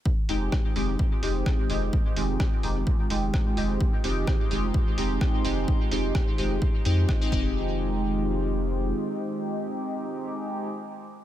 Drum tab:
HH |-o-o-o-o|-o-o-o-o|-o-o-o-o|-o-o-o--|
SD |--r---r-|--r---r-|--r---r-|--r---r-|
BD |o-o-o-o-|o-o-o-o-|o-o-o-o-|o-o-o-oo|

HH |--------|--------|
SD |--------|--------|
BD |--------|--------|